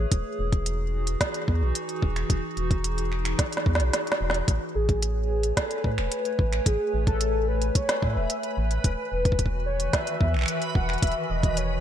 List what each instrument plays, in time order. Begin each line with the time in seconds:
Already playing: ambient pad G#4
0.12 analog synth bass E1, ambient pad E3 D#4 F#4, kick, closed hi-hat
0.39 analog synth bass E1
0.52 kick, closed hi-hat
0.66 closed hi-hat
1.07 closed hi-hat
1.21 kick, snare, closed hi-hat
1.34 closed hi-hat
1.48 analog synth bass E2, kick
1.62 analog synth bass B1
1.75 closed hi-hat
1.89 closed hi-hat
2.02 analog synth bass E1, kick
2.16 finger snap, closed hi-hat
2.30 analog synth bass E1, kick, closed hi-hat
2.57 analog synth bass E1, closed hi-hat
2.71 kick, closed hi-hat
2.84 closed hi-hat
2.98 closed hi-hat
3.12 finger snap
3.25 finger snap, closed hi-hat
3.39 kick, snare, closed hi-hat
3.53 closed hi-hat
3.57 snare
3.66 analog synth bass E2, kick
3.75 snare
3.80 analog synth bass B1, closed hi-hat
3.93 snare, closed hi-hat
4.07 closed hi-hat
4.12 snare
4.21 analog synth bass E1
4.30 snare
4.34 closed hi-hat
4.48 analog synth bass A1, ambient pad A3 B4 C#5 G#5, synth texture B4, kick, closed hi-hat
4.75 analog synth bass A1, soft synth lead G#4
4.89 kick, closed hi-hat
5.02 soft synth lead G#4, closed hi-hat
5.43 closed hi-hat
5.57 soft synth lead A4, kick, snare, closed hi-hat
5.71 closed hi-hat
5.84 analog synth bass A2, soft synth lead B4, kick
5.98 analog synth bass E1, finger snap
6.12 closed hi-hat
6.25 closed hi-hat
6.39 analog synth bass A1, kick
6.53 finger snap, closed hi-hat
6.66 analog synth bass A1, soft synth lead G#4, kick, closed hi-hat
6.93 analog synth bass A1
7.07 soft synth lead A4, kick, closed hi-hat
7.21 closed hi-hat
7.48 soft synth lead B4
7.62 closed hi-hat
7.75 soft synth lead C#5, kick, closed hi-hat
7.89 snare, closed hi-hat
8.02 analog synth bass A2, soft synth lead E5, kick
8.16 analog synth bass E1
8.30 closed hi-hat
8.43 closed hi-hat
8.57 analog synth bass A1
8.71 closed hi-hat
8.84 analog synth bass E1, ambient pad D#3 E3 F#4, soft synth lead B4, kick, closed hi-hat
9.12 analog synth bass E1
9.25 kick, closed hi-hat
9.32 kick
9.39 kick, closed hi-hat
9.46 kick
9.66 soft synth lead C#5
9.80 closed hi-hat
9.93 soft synth lead E5, kick, snare, closed hi-hat
10.07 closed hi-hat
10.21 analog synth bass E2, kick
10.34 analog synth bass B1, finger snap
10.37 finger snap
10.39 finger snap
10.41 finger snap
10.43 finger snap
10.46 finger snap, closed hi-hat
10.62 closed hi-hat
10.75 analog synth bass E1, soft synth lead F#5, kick
10.89 finger snap, closed hi-hat
10.93 closed hi-hat
10.98 closed hi-hat
11.02 analog synth bass E1, soft synth lead E5, kick, closed hi-hat
11.07 closed hi-hat
11.12 closed hi-hat
11.30 analog synth bass E1, soft synth lead D#5
11.43 kick, closed hi-hat
11.57 soft synth lead C#5, closed hi-hat